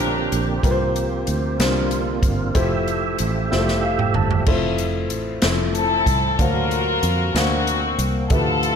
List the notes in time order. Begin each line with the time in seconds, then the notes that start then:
Already playing: A#1 A#2 D3 A#3 C4 C#4 D4 F4 G4 A#4 C5
0.00 closed hi-hat
0.32 A#1, closed hi-hat
0.62 C2 C3 F3 A#3 C4 F4 G4 B4, kick, closed hi-hat
0.71 C5
0.96 closed hi-hat
1.27 D2, closed hi-hat
1.58 C2 C3 D3 A#3 D4 F4 G4 C5, snare, closed hi-hat
1.91 closed hi-hat
2.23 G1, kick, closed hi-hat
2.54 F1 F3 A3 E4 F4 G4 C5 E5, kick, closed hi-hat
2.88 closed hi-hat
3.19 A1, closed hi-hat
3.51 F1 G3 E4 F4 G4 C5, snare
3.57 A3
3.68 snare
3.83 F5
3.99 G5, mid tom
4.14 G1 A5, floor tom
4.31 floor tom
4.46 F1 A3 C4 E4 F4 C5, kick, crash
4.78 closed hi-hat
5.10 A1, closed hi-hat
5.42 F1 F3 A3 C4 E4 C5, snare, closed hi-hat
5.75 C4 E4 A4, closed hi-hat
6.06 C2, kick, closed hi-hat
6.38 D2 D3 F#3 A#3 D4 F4 F#4 A#4 C5 F5, kick, closed hi-hat
6.71 closed hi-hat
7.03 F2, closed hi-hat
7.34 D2 A#3 C4 D4 F#4 C5 F5, snare, closed hi-hat
7.67 closed hi-hat
7.98 C2, closed hi-hat
8.30 D2 D3 F3 A3 E4 F4 G4 A4 B4 E5, kick, closed hi-hat
8.63 closed hi-hat